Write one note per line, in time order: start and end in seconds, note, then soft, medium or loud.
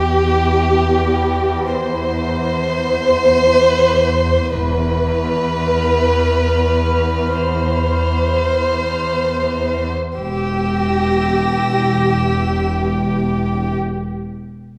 0.00 4.47 E2 soft
0.00 1.64 G4 soft
1.70 4.48 C5 soft
4.51 5.04 E1 soft
4.51 9.93 E2 soft
4.51 7.31 B4 soft
4.51 9.85 B5 soft
5.05 9.84 F6 soft
7.34 9.93 C5 soft
10.16 13.76 E1 soft
10.16 13.76 E2 soft
10.16 13.76 G4 soft
10.16 12.67 E6 soft
10.72 12.19 A#6 soft
12.19 12.67 B6 soft